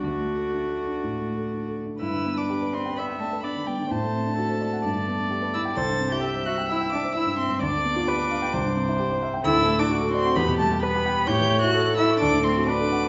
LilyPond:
<<
  \new Staff \with { instrumentName = "Violin" } { \time 4/4 \key g \major \tempo 4 = 129 d''2.~ d''8 r8 | e'''8. d'''8. c'''8 b''8 a''8 b''8 g''8 | a''2.~ a''8 e'''8 | a'''8. g'''8. fis'''8 e'''8 d'''8 e'''8 c'''8 |
d'''2.~ d'''8 r8 | e'''8. d'''8. c'''8 b''8 a''8 b''4 | g'''8. fis'''8. e'''8 d'''8 c'''8 d'''4 | }
  \new Staff \with { instrumentName = "Viola" } { \time 4/4 \key g \major fis'2.~ fis'8 r8 | b'2 e''4 d''4 | c''4 a'4 d''2 | c''4 e''2. |
d''4 b'4 c''2 | a'4 fis'4 g'4 b'4 | cis''4 a'2 b'4 | }
  \new Staff \with { instrumentName = "Grand piano" } { \time 4/4 \key g \major \tuplet 3/2 { d,8 a8 a'8 d'8 a'8 d'8 a,8 a8 a'8 d'8 a'8 d'8 } | g,16 d16 b16 d'16 g'16 b'16 d''16 g''16 d''16 g''16 d''16 b'16 d'16 d16 b16 d16 | a,16 a16 c'16 d'16 fis'16 c''16 d''16 fis''16 g,16 d16 b16 d'16 g'16 b'16 d''16 g''16 | c,16 g,16 c'16 e'16 g'16 c''16 e''16 g''16 e''16 g''16 e''16 c''16 e'16 g,16 c'16 g,16 |
d,16 d16 b16 f'16 g'16 b'16 f''16 g''16 c,16 g,16 c'16 e'16 g'16 c''16 e''16 g''16 | d,16 a,16 a16 d'16 fis'16 a'16 d''16 fis''16 e,16 b,16 g16 g'16 b'16 g'16 g''16 b''16 | a,16 e16 a16 e'16 cis''16 a'16 e''16 cis'''16 d,16 a,16 a16 fis'16 d''16 a'16 fis''16 d'''16 | }
  \new Staff \with { instrumentName = "Cello" } { \time 4/4 \key g \major a2.~ a8 r8 | e'8. d'8. c'8 b8 a8 b8 g8 | a2.~ a8 e'8 | a'8. g'8. fis'8 e'8 d'8 e'8 c'8 |
d'2.~ d'8 r8 | e'8. d'8. c'8 b8 a8 b4 | g'8. fis'8. e'8 d'8 c'8 d'4 | }
>>